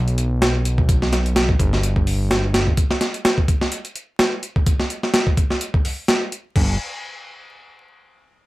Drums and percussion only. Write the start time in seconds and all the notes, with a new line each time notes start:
0.08 closed hi-hat
0.18 closed hi-hat
0.42 snare, closed hi-hat
0.65 closed hi-hat
0.78 kick
0.89 kick, closed hi-hat
1.02 snare
1.13 snare, closed hi-hat
1.26 closed hi-hat
1.36 snare, closed hi-hat
1.49 kick
1.59 kick, closed hi-hat
1.73 snare
1.83 closed hi-hat
1.96 kick
2.07 open hi-hat
2.31 snare, closed hi-hat
2.54 snare, closed hi-hat
2.67 kick
2.77 kick, closed hi-hat
2.91 snare
3.01 snare, closed hi-hat
3.14 closed hi-hat
3.25 snare, closed hi-hat
3.38 kick
3.48 kick, closed hi-hat
3.61 snare
3.72 closed hi-hat
3.85 closed hi-hat
3.96 closed hi-hat
4.19 snare, closed hi-hat
4.43 closed hi-hat
4.56 kick
4.66 kick, closed hi-hat
4.80 snare
4.90 closed hi-hat
5.03 snare
5.14 snare, closed hi-hat
5.27 kick
5.37 kick, closed hi-hat
5.51 snare
5.61 closed hi-hat
5.74 kick
5.85 open hi-hat
6.08 snare, closed hi-hat
6.32 closed hi-hat
6.56 kick, crash